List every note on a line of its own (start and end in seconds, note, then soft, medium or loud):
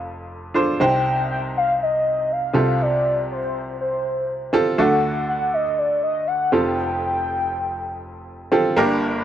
0.00 0.75 F1 medium
0.00 0.75 F2 medium
0.00 0.54 D4 medium
0.00 0.55 F4 medium
0.00 0.55 A4 medium
0.00 0.55 C5 medium
0.00 0.26 F5 medium
0.54 0.76 D4 medium
0.54 0.76 F4 medium
0.54 0.76 A4 medium
0.54 0.76 C5 medium
0.80 2.51 C2 medium
0.80 2.51 C3 medium
0.80 1.64 C4 medium
0.80 1.64 D#4 medium
0.80 1.65 G4 medium
0.80 1.65 C5 medium
0.80 1.27 G5 loud
1.31 1.42 G5 medium
1.57 1.79 F5 loud
1.82 2.33 D#5 medium
2.32 2.83 F5 medium
2.53 4.49 C2 medium
2.53 4.49 C3 medium
2.53 3.38 C4 medium
2.53 3.38 F4 medium
2.53 3.38 G4 medium
2.53 3.39 A4 medium
2.82 3.30 D5 loud
3.32 3.77 C5 medium
3.81 4.50 C5 medium
4.53 4.74 C4 medium
4.53 4.74 F4 medium
4.53 4.74 G4 medium
4.53 4.75 A4 medium
4.78 6.49 D2 medium
4.78 6.49 D3 medium
4.78 5.63 A3 medium
4.78 5.63 D4 medium
4.78 5.63 F#4 medium
4.78 5.63 A4 medium
4.78 5.25 F#5 loud
5.29 5.51 F#5 medium
5.54 5.80 D#5 medium
5.78 6.02 D5 medium
6.03 6.29 D#5 medium
6.27 6.53 F#5 loud
6.52 8.48 F1 medium
6.52 8.48 F2 medium
6.52 7.37 C4 medium
6.52 7.37 F4 medium
6.52 7.37 G4 medium
6.52 7.37 A4 medium
6.52 8.51 G5 loud
8.52 8.73 C4 medium
8.52 8.73 F4 medium
8.52 8.73 G4 medium
8.52 8.73 A4 medium
8.77 9.24 G1 medium
8.77 9.24 G2 medium
8.77 9.24 A#3 loud
8.77 9.24 D4 medium
8.77 9.24 G4 medium
8.77 9.24 A#4 loud